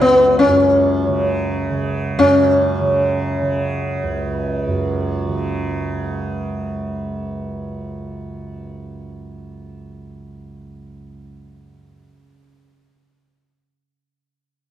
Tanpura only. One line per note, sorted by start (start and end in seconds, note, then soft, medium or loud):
0.00 4.03 C#2 medium
0.00 0.46 F#2 medium
0.00 1.08 C#3 medium
0.47 2.18 F#2 medium
1.08 1.70 C#3 medium
1.70 2.81 C#3 medium
2.18 4.66 F#2 medium
2.81 3.42 C#3 medium
3.42 5.29 C#3 medium
4.03 11.18 C#2 medium
4.67 11.82 F#2 medium
5.29 12.44 C#3 medium